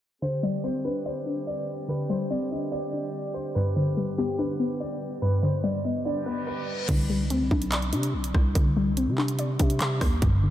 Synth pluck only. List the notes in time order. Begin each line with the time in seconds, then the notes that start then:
0.22 D3
0.43 G3
0.64 C4
0.85 D4
1.06 D5
1.26 D4
1.89 D3
2.10 G3
2.31 C4
2.52 D4
2.72 D5
2.93 D4
3.56 G2
3.76 D3
3.97 G3
4.18 B3
4.39 D4
4.60 B3
5.22 G2
5.43 D3
5.64 G3
5.85 B3
6.06 D4
6.26 B3
6.89 D3
7.10 G3
7.30 C4
7.52 D4
7.72 D5
7.93 D4
8.55 D3
8.77 G3
8.97 C4
9.18 D4
9.39 D5
9.60 D4
10.23 G2
10.43 D3